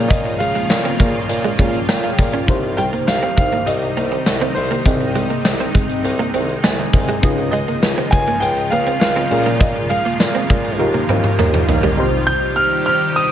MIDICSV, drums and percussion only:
0, 0, Header, 1, 2, 480
1, 0, Start_track
1, 0, Tempo, 594059
1, 84, Time_signature, 4, 2, 24, 8
1, 10761, End_track
2, 0, Start_track
2, 0, Title_t, "Drums"
2, 85, Note_on_c, 9, 36, 115
2, 86, Note_on_c, 9, 42, 105
2, 166, Note_off_c, 9, 36, 0
2, 167, Note_off_c, 9, 42, 0
2, 207, Note_on_c, 9, 42, 51
2, 288, Note_off_c, 9, 42, 0
2, 326, Note_on_c, 9, 42, 74
2, 407, Note_off_c, 9, 42, 0
2, 446, Note_on_c, 9, 42, 53
2, 527, Note_off_c, 9, 42, 0
2, 563, Note_on_c, 9, 54, 95
2, 565, Note_on_c, 9, 38, 118
2, 567, Note_off_c, 9, 54, 0
2, 567, Note_on_c, 9, 54, 69
2, 646, Note_off_c, 9, 38, 0
2, 648, Note_off_c, 9, 54, 0
2, 686, Note_on_c, 9, 42, 49
2, 766, Note_off_c, 9, 42, 0
2, 806, Note_on_c, 9, 42, 82
2, 807, Note_on_c, 9, 36, 100
2, 887, Note_off_c, 9, 42, 0
2, 888, Note_off_c, 9, 36, 0
2, 924, Note_on_c, 9, 42, 60
2, 1004, Note_off_c, 9, 42, 0
2, 1044, Note_on_c, 9, 42, 106
2, 1124, Note_off_c, 9, 42, 0
2, 1161, Note_on_c, 9, 42, 49
2, 1242, Note_off_c, 9, 42, 0
2, 1284, Note_on_c, 9, 36, 97
2, 1284, Note_on_c, 9, 42, 67
2, 1365, Note_off_c, 9, 36, 0
2, 1365, Note_off_c, 9, 42, 0
2, 1405, Note_on_c, 9, 42, 57
2, 1486, Note_off_c, 9, 42, 0
2, 1524, Note_on_c, 9, 54, 72
2, 1525, Note_off_c, 9, 54, 0
2, 1525, Note_on_c, 9, 38, 119
2, 1525, Note_on_c, 9, 54, 90
2, 1606, Note_off_c, 9, 38, 0
2, 1606, Note_off_c, 9, 54, 0
2, 1646, Note_on_c, 9, 42, 58
2, 1727, Note_off_c, 9, 42, 0
2, 1766, Note_on_c, 9, 36, 89
2, 1769, Note_on_c, 9, 46, 76
2, 1847, Note_off_c, 9, 36, 0
2, 1849, Note_off_c, 9, 46, 0
2, 1890, Note_on_c, 9, 42, 49
2, 1971, Note_off_c, 9, 42, 0
2, 2006, Note_on_c, 9, 36, 112
2, 2006, Note_on_c, 9, 42, 99
2, 2086, Note_off_c, 9, 36, 0
2, 2087, Note_off_c, 9, 42, 0
2, 2128, Note_on_c, 9, 42, 47
2, 2209, Note_off_c, 9, 42, 0
2, 2246, Note_on_c, 9, 42, 77
2, 2327, Note_off_c, 9, 42, 0
2, 2366, Note_on_c, 9, 42, 56
2, 2447, Note_off_c, 9, 42, 0
2, 2484, Note_on_c, 9, 54, 90
2, 2487, Note_on_c, 9, 38, 111
2, 2488, Note_off_c, 9, 54, 0
2, 2488, Note_on_c, 9, 54, 70
2, 2568, Note_off_c, 9, 38, 0
2, 2569, Note_off_c, 9, 54, 0
2, 2607, Note_on_c, 9, 42, 47
2, 2688, Note_off_c, 9, 42, 0
2, 2726, Note_on_c, 9, 42, 77
2, 2727, Note_on_c, 9, 36, 101
2, 2807, Note_off_c, 9, 42, 0
2, 2808, Note_off_c, 9, 36, 0
2, 2843, Note_on_c, 9, 42, 60
2, 2924, Note_off_c, 9, 42, 0
2, 2963, Note_on_c, 9, 42, 104
2, 3044, Note_off_c, 9, 42, 0
2, 3082, Note_on_c, 9, 42, 53
2, 3163, Note_off_c, 9, 42, 0
2, 3203, Note_on_c, 9, 42, 73
2, 3284, Note_off_c, 9, 42, 0
2, 3323, Note_on_c, 9, 42, 53
2, 3404, Note_off_c, 9, 42, 0
2, 3444, Note_on_c, 9, 54, 75
2, 3445, Note_on_c, 9, 38, 125
2, 3446, Note_off_c, 9, 54, 0
2, 3446, Note_on_c, 9, 54, 86
2, 3525, Note_off_c, 9, 38, 0
2, 3527, Note_off_c, 9, 54, 0
2, 3563, Note_on_c, 9, 42, 57
2, 3644, Note_off_c, 9, 42, 0
2, 3684, Note_on_c, 9, 46, 75
2, 3765, Note_off_c, 9, 46, 0
2, 3806, Note_on_c, 9, 42, 53
2, 3887, Note_off_c, 9, 42, 0
2, 3922, Note_on_c, 9, 42, 99
2, 3923, Note_on_c, 9, 36, 109
2, 4003, Note_off_c, 9, 42, 0
2, 4004, Note_off_c, 9, 36, 0
2, 4044, Note_on_c, 9, 42, 49
2, 4125, Note_off_c, 9, 42, 0
2, 4162, Note_on_c, 9, 42, 76
2, 4243, Note_off_c, 9, 42, 0
2, 4283, Note_on_c, 9, 42, 57
2, 4364, Note_off_c, 9, 42, 0
2, 4404, Note_on_c, 9, 38, 111
2, 4404, Note_on_c, 9, 54, 93
2, 4405, Note_off_c, 9, 54, 0
2, 4405, Note_on_c, 9, 54, 66
2, 4484, Note_off_c, 9, 38, 0
2, 4486, Note_off_c, 9, 54, 0
2, 4524, Note_on_c, 9, 42, 51
2, 4605, Note_off_c, 9, 42, 0
2, 4643, Note_on_c, 9, 42, 81
2, 4645, Note_on_c, 9, 36, 100
2, 4724, Note_off_c, 9, 42, 0
2, 4726, Note_off_c, 9, 36, 0
2, 4761, Note_on_c, 9, 42, 63
2, 4842, Note_off_c, 9, 42, 0
2, 4883, Note_on_c, 9, 42, 98
2, 4964, Note_off_c, 9, 42, 0
2, 5001, Note_on_c, 9, 42, 54
2, 5082, Note_off_c, 9, 42, 0
2, 5122, Note_on_c, 9, 42, 70
2, 5203, Note_off_c, 9, 42, 0
2, 5244, Note_on_c, 9, 42, 54
2, 5325, Note_off_c, 9, 42, 0
2, 5363, Note_on_c, 9, 54, 69
2, 5364, Note_off_c, 9, 54, 0
2, 5364, Note_on_c, 9, 38, 118
2, 5364, Note_on_c, 9, 54, 89
2, 5445, Note_off_c, 9, 38, 0
2, 5445, Note_off_c, 9, 54, 0
2, 5482, Note_on_c, 9, 42, 60
2, 5563, Note_off_c, 9, 42, 0
2, 5603, Note_on_c, 9, 36, 90
2, 5603, Note_on_c, 9, 46, 77
2, 5684, Note_off_c, 9, 36, 0
2, 5684, Note_off_c, 9, 46, 0
2, 5726, Note_on_c, 9, 42, 53
2, 5806, Note_off_c, 9, 42, 0
2, 5843, Note_on_c, 9, 36, 108
2, 5843, Note_on_c, 9, 42, 107
2, 5923, Note_off_c, 9, 42, 0
2, 5924, Note_off_c, 9, 36, 0
2, 5965, Note_on_c, 9, 42, 50
2, 6046, Note_off_c, 9, 42, 0
2, 6081, Note_on_c, 9, 42, 80
2, 6162, Note_off_c, 9, 42, 0
2, 6201, Note_on_c, 9, 42, 58
2, 6282, Note_off_c, 9, 42, 0
2, 6321, Note_on_c, 9, 54, 95
2, 6324, Note_on_c, 9, 38, 116
2, 6325, Note_off_c, 9, 54, 0
2, 6325, Note_on_c, 9, 54, 67
2, 6405, Note_off_c, 9, 38, 0
2, 6406, Note_off_c, 9, 54, 0
2, 6444, Note_on_c, 9, 42, 49
2, 6525, Note_off_c, 9, 42, 0
2, 6563, Note_on_c, 9, 42, 83
2, 6565, Note_on_c, 9, 36, 98
2, 6644, Note_off_c, 9, 42, 0
2, 6645, Note_off_c, 9, 36, 0
2, 6680, Note_on_c, 9, 42, 66
2, 6761, Note_off_c, 9, 42, 0
2, 6802, Note_on_c, 9, 42, 111
2, 6883, Note_off_c, 9, 42, 0
2, 6921, Note_on_c, 9, 42, 55
2, 7001, Note_off_c, 9, 42, 0
2, 7042, Note_on_c, 9, 42, 71
2, 7122, Note_off_c, 9, 42, 0
2, 7161, Note_on_c, 9, 42, 56
2, 7242, Note_off_c, 9, 42, 0
2, 7282, Note_on_c, 9, 54, 73
2, 7283, Note_on_c, 9, 38, 124
2, 7285, Note_off_c, 9, 54, 0
2, 7285, Note_on_c, 9, 54, 89
2, 7364, Note_off_c, 9, 38, 0
2, 7366, Note_off_c, 9, 54, 0
2, 7401, Note_on_c, 9, 42, 56
2, 7482, Note_off_c, 9, 42, 0
2, 7522, Note_on_c, 9, 46, 82
2, 7603, Note_off_c, 9, 46, 0
2, 7642, Note_on_c, 9, 42, 53
2, 7723, Note_off_c, 9, 42, 0
2, 7759, Note_on_c, 9, 42, 101
2, 7762, Note_on_c, 9, 36, 116
2, 7840, Note_off_c, 9, 42, 0
2, 7842, Note_off_c, 9, 36, 0
2, 7882, Note_on_c, 9, 42, 48
2, 7963, Note_off_c, 9, 42, 0
2, 8000, Note_on_c, 9, 42, 79
2, 8081, Note_off_c, 9, 42, 0
2, 8123, Note_on_c, 9, 42, 53
2, 8204, Note_off_c, 9, 42, 0
2, 8241, Note_on_c, 9, 54, 91
2, 8242, Note_on_c, 9, 38, 118
2, 8243, Note_off_c, 9, 54, 0
2, 8243, Note_on_c, 9, 54, 69
2, 8322, Note_off_c, 9, 38, 0
2, 8324, Note_off_c, 9, 54, 0
2, 8363, Note_on_c, 9, 42, 50
2, 8444, Note_off_c, 9, 42, 0
2, 8483, Note_on_c, 9, 42, 81
2, 8484, Note_on_c, 9, 36, 102
2, 8563, Note_off_c, 9, 42, 0
2, 8565, Note_off_c, 9, 36, 0
2, 8600, Note_on_c, 9, 42, 60
2, 8681, Note_off_c, 9, 42, 0
2, 8721, Note_on_c, 9, 48, 56
2, 8802, Note_off_c, 9, 48, 0
2, 8841, Note_on_c, 9, 48, 54
2, 8922, Note_off_c, 9, 48, 0
2, 8960, Note_on_c, 9, 47, 77
2, 9041, Note_off_c, 9, 47, 0
2, 9080, Note_on_c, 9, 47, 73
2, 9161, Note_off_c, 9, 47, 0
2, 9203, Note_on_c, 9, 45, 92
2, 9206, Note_on_c, 9, 54, 87
2, 9283, Note_off_c, 9, 45, 0
2, 9286, Note_off_c, 9, 54, 0
2, 9323, Note_on_c, 9, 45, 83
2, 9404, Note_off_c, 9, 45, 0
2, 9442, Note_on_c, 9, 43, 107
2, 9522, Note_off_c, 9, 43, 0
2, 9561, Note_on_c, 9, 43, 97
2, 9641, Note_off_c, 9, 43, 0
2, 10761, End_track
0, 0, End_of_file